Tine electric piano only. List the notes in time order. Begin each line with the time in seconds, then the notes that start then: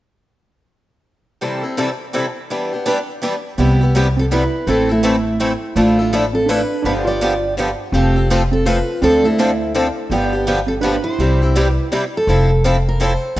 3.58 B3
4.17 C4
4.33 E4
4.69 C4
4.92 A3
5.76 A3
6.33 C4
6.46 D4
6.83 D4
7.05 F4
7.93 C4
8.52 C4
8.66 F4
9.02 C4
9.24 A3
10.11 B3
10.67 C4
10.81 D4
11.04 E4